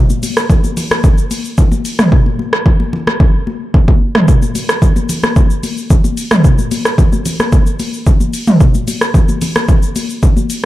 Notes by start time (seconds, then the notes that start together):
0.10 high conga, shaker
0.23 open hi-hat, high conga, shaker
0.37 cross-stick, shaker
0.50 kick, low conga, shaker
0.64 high conga, shaker
0.77 open hi-hat, low conga, shaker
0.91 cross-stick, high conga, shaker
1.04 kick, low conga, shaker
1.18 shaker
1.31 open hi-hat, high conga, shaker
1.45 shaker
1.58 kick, low conga, shaker
1.72 high conga, shaker
1.85 open hi-hat, shaker
1.99 cross-stick, mid tom, high conga, shaker
2.12 kick
2.26 high conga
2.39 high conga
2.53 cross-stick
2.66 kick, low conga
2.80 high conga
2.93 low conga
3.07 cross-stick, high conga
3.20 kick, low conga
3.47 high conga
3.74 kick, low conga
3.88 kick, high conga
4.15 cross-stick, mid tom, high conga
4.28 kick, shaker
4.42 high conga, shaker
4.55 open hi-hat, high conga, shaker
4.69 cross-stick, shaker
4.82 kick, low conga, shaker
4.96 high conga, shaker
5.09 open hi-hat, low conga, shaker
5.23 cross-stick, high conga, shaker
5.36 kick, low conga, shaker
5.50 shaker
5.63 open hi-hat, high conga, shaker
5.77 shaker
5.90 kick, low conga, shaker
6.04 high conga, shaker
6.17 open hi-hat, shaker
6.31 cross-stick, mid tom, high conga, shaker
6.44 kick, shaker
6.58 high conga, shaker
6.71 open hi-hat, high conga, shaker
6.85 cross-stick, shaker
6.98 kick, low conga, shaker
7.13 high conga, shaker
7.25 open hi-hat, low conga, shaker
7.40 cross-stick, high conga, shaker
7.52 kick, low conga, shaker
7.66 shaker
7.80 open hi-hat, high conga, shaker
7.93 shaker
8.06 kick, low conga, shaker
8.20 high conga, shaker
8.33 open hi-hat, shaker
8.47 mid tom, high conga, shaker
8.60 kick, shaker
8.74 high conga, shaker
8.88 open hi-hat, high conga, shaker
9.01 cross-stick, shaker
9.14 kick, low conga, shaker
9.29 high conga, shaker
9.41 open hi-hat, low conga, shaker
9.55 cross-stick, high conga, shaker
9.68 kick, low conga, shaker
9.83 shaker
9.96 open hi-hat, high conga, shaker
10.10 shaker
10.23 kick, low conga, shaker
10.37 high conga, shaker
10.50 open hi-hat, shaker